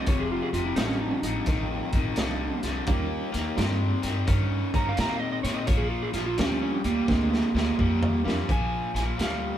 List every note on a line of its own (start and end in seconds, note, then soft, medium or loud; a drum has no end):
0.07 0.38 F1 medium
0.07 0.49 F2 medium
0.07 0.49 C3 medium
0.07 0.23 C#5 medium
0.07 kick loud
0.07 closed hi-hat medium
0.20 0.29 G#4 medium
0.32 0.52 F4 medium
0.42 0.48 G#4 medium
0.53 0.69 F1 medium
0.53 0.75 F2 medium
0.53 0.75 C3 medium
0.53 0.65 F4 medium
0.53 closed hi-hat medium
0.66 0.75 E4 medium
0.76 1.08 A1 medium
0.76 1.19 F2 medium
0.76 1.19 D3 medium
0.76 1.84 G3 medium
0.76 1.84 A3 medium
0.76 1.84 C4 medium
0.76 0.87 D#4 medium
0.76 1.85 F4 medium
0.76 1.84 D#5 medium
0.76 snare loud
0.76 closed hi-hat medium
0.87 0.97 C#4 medium
1.01 1.23 D#4 medium
1.11 1.17 C#4 medium
1.23 1.39 A1 medium
1.23 1.45 F2 medium
1.23 1.45 D3 medium
1.23 2.61 D#4 medium
1.23 closed hi-hat medium
1.46 1.79 A1 medium
1.46 1.89 F2 medium
1.46 1.89 D#3 loud
1.46 kick loud
1.46 snare soft
1.46 closed hi-hat medium
1.93 2.09 A1 medium
1.93 2.15 F2 medium
1.93 2.16 D#3 medium
1.93 kick medium
1.93 closed hi-hat medium
2.16 2.49 C2 medium
2.16 2.59 F2 medium
2.16 2.59 D3 loud
2.16 2.59 G3 medium
2.16 2.59 A3 medium
2.16 2.59 C4 medium
2.16 2.60 F4 medium
2.16 2.60 D#5 medium
2.16 snare loud
2.16 closed hi-hat medium
2.63 2.80 C2 medium
2.63 2.85 F2 medium
2.63 2.85 D3 medium
2.63 snare soft
2.63 closed hi-hat medium
2.87 3.19 D#2 medium
2.87 3.29 D#3 medium
2.87 3.29 G3 medium
2.87 3.29 A#3 loud
2.87 3.29 A#3 medium
2.87 3.29 C#4 medium
2.87 3.30 D#4 medium
2.87 3.30 F4 medium
2.87 kick loud
2.87 closed hi-hat medium
3.32 3.50 D#2 medium
3.32 3.55 D#3 medium
3.32 3.55 A#3 medium
3.32 snare soft
3.32 closed hi-hat medium
3.56 3.89 G2 medium
3.56 3.99 D#3 medium
3.56 3.98 G3 medium
3.56 3.99 A#3 medium
3.56 3.99 C4 medium
3.56 3.99 D#4 medium
3.56 3.99 F4 medium
3.56 3.99 G4 medium
3.56 snare loud
3.56 closed hi-hat medium
4.03 4.20 G2 medium
4.03 4.25 D#3 medium
4.03 4.25 C4 medium
4.03 snare soft
4.03 closed hi-hat medium
4.27 4.59 G2 medium
4.27 4.69 D#3 medium
4.27 4.69 C#4 medium
4.27 kick loud
4.27 closed hi-hat medium
4.74 4.90 G2 medium
4.74 4.96 D#3 medium
4.74 4.96 C#4 medium
4.74 4.90 A#5 medium
4.74 kick medium
4.74 closed hi-hat medium
4.89 4.97 F5 medium
4.97 5.29 A#2 medium
4.97 5.39 D#3 medium
4.97 5.39 C4 medium
4.97 5.14 A#5 medium
4.97 snare loud
4.97 closed hi-hat medium
5.09 5.19 F5 medium
5.19 5.31 D#5 medium
5.32 5.39 D#5 medium
5.43 5.60 A#2 medium
5.43 5.66 D#3 medium
5.43 5.66 C4 medium
5.43 5.59 C#5 medium
5.43 snare soft
5.43 closed hi-hat medium
5.54 5.65 D#5 medium
5.67 6.00 A#1 medium
5.67 6.09 A#2 medium
5.67 6.09 F3 loud
5.67 5.83 C#5 medium
5.67 kick loud
5.67 closed hi-hat medium
5.77 5.88 G#4 medium
5.90 6.13 F4 medium
6.02 6.09 G#4 medium
6.13 6.30 A#1 medium
6.13 6.35 A#2 medium
6.13 6.36 F3 medium
6.13 6.25 F4 medium
6.13 snare soft
6.13 closed hi-hat medium
6.26 6.36 F4 medium
6.38 6.70 D2 medium
6.38 6.80 A#2 medium
6.38 6.80 F3 medium
6.38 6.80 G3 medium
6.38 6.80 A#3 medium
6.38 6.80 C4 medium
6.38 6.51 C#4 medium
6.38 6.81 D4 medium
6.38 6.81 F4 medium
6.38 snare loud
6.38 closed hi-hat medium
6.52 6.61 C#4 medium
6.62 6.73 C#4 medium
6.74 6.80 C#4 medium
6.84 7.01 D2 medium
6.84 7.06 A#2 medium
6.84 7.06 G3 medium
6.84 8.22 A#3 medium
6.84 closed hi-hat medium
7.08 7.40 D2 medium
7.08 7.50 A#2 medium
7.08 7.50 G#3 medium
7.08 7.50 A#3 medium
7.08 7.50 C4 medium
7.08 7.50 D4 medium
7.08 7.51 G4 medium
7.08 kick loud
7.08 snare medium
7.33 snare medium
7.54 7.71 D2 medium
7.54 7.76 A#2 medium
7.54 7.76 G#3 medium
7.54 snare medium
7.79 8.10 F2 medium
7.79 8.20 A#2 medium
7.79 8.21 G3 loud
7.79 kick medium
8.03 floor tom medium
8.23 8.41 F2 medium
8.23 8.46 A#2 medium
8.23 8.48 F3 medium
8.23 8.47 G3 medium
8.23 8.49 A#3 medium
8.23 8.48 C4 medium
8.23 8.49 D4 medium
8.23 8.49 F4 medium
8.28 snare medium
8.48 8.80 A#1 medium
8.48 8.90 A#2 medium
8.48 8.90 F3 medium
8.48 8.95 G#5 medium
8.48 kick loud
8.48 closed hi-hat medium
8.94 9.11 A#1 medium
8.94 9.16 A#2 medium
8.94 9.16 F3 medium
8.94 9.03 G#5 medium
8.94 snare soft
8.94 closed hi-hat medium
9.18 9.51 D2 medium
9.18 9.58 A#2 medium
9.18 9.58 G3 medium
9.18 snare medium
9.18 closed hi-hat medium
9.23 9.58 F5 medium